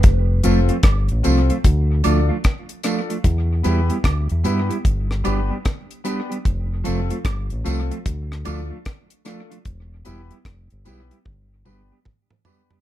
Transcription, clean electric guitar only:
X:1
M:4/4
L:1/16
Q:"Swing 16ths" 1/4=75
K:Flyd
V:1 name="Clean electric guitar"
z2 [F,A,CF] [F,A,CF] z2 [F,A,CF] [F,A,CF] z2 [F,A,DF] [F,A,DF] z2 [F,A,DF] [F,A,DF] | z2 [G,B,EG] [G,B,EG] z2 [G,B,EG] [G,B,EG] z2 [G,B,DG] [G,B,DG] z2 [G,B,DG] [G,B,DG] | z2 [F,A,CF] [F,A,CF] z2 [F,A,CF] [F,A,CF] z2 [F,A,DF] [F,A,DF] z2 [F,A,DF] [F,A,DF] | z2 [G,B,EG] [G,B,EG] z2 [G,B,EG] [G,B,EG] z2 [G,B,DG] [G,B,DG] z2 [G,B,DG] [G,B,DG] |]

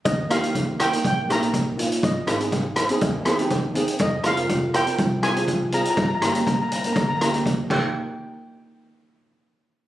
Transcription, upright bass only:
X:1
M:4/4
L:1/8
Q:1/4=122
K:Eb
V:1 name="Upright bass" clef=bass
E,, E,,3 B,,,4 | A,,, A,,,3 E,,4 | F,,, F,,,3 C,,4 | G,,, G,,,3 D,,3 E,, |
z8 |]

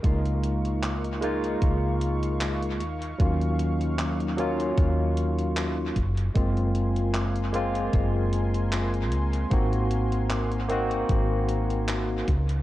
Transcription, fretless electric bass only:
X:1
M:4/4
L:1/8
Q:"Swing 16ths" 1/4=76
K:Gblyd
V:1 name="Fretless electric bass" clef=bass
D,,4 D,,3 E,, | E,,4 E,,3 G,,, | G,,,4 G,,,3 D,, | A,,,4 A,,,3 D,, |]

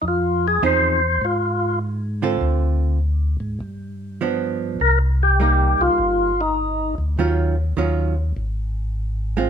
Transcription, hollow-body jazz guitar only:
X:1
M:4/4
L:1/8
Q:"Swing" 1/4=101
K:Fm
V:1 name="Hollow-body jazz guitar"
z2 [F,CEA] z4 [=D,CF=A]- | [=D,CF=A]2 z4 [F,=B,=D]2 | z2 [G,B,E]3 z3 | [E,_G,DF] z [E,G,DF] z4 [A,CF] |]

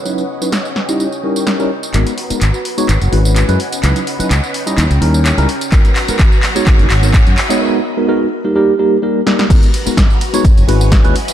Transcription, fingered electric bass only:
X:1
M:4/4
L:1/16
Q:"Swing 16ths" 1/4=127
K:G#m
V:1 name="Fingered electric bass" clef=bass
z16 | G,,, z3 G,,, z3 G,,, F,,, G,,,2 z F,, z2 | C,, z3 C,, z3 D,, C,, D,,2 z C,, z2 | G,,, z3 G,,, z3 G,,, F,,, G,,,2 z F,, z2 |
z16 | G,,, z3 G,,, z3 G,,, F,,, G,,,2 z D,, z2 |]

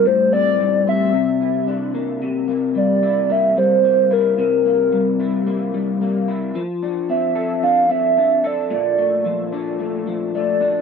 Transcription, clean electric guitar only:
X:1
M:4/4
L:1/8
Q:"Swing 16ths" 1/4=111
K:Cmix
V:1 name="Clean electric guitar"
A,, C G, C C, E D B, | C, B, G, E B, G, B, E | C, B, G, E B, G, B, E | F, D C A D C D A |
B,, A, F, D A, F, A, D |]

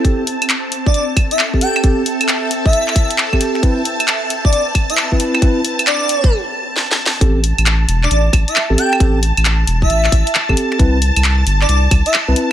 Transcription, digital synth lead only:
X:1
M:4/4
L:1/16
Q:"Swing 16ths" 1/4=134
K:Am
V:1 name="Digital synth lead"
z6 z d d z2 e z2 g z | z6 z e4 z4 z | z6 z d d z2 e z4 | z4 d4 z8 |
z6 z d d z2 e z2 g z | z6 z e4 z4 z | z6 z d d z2 e z4 |]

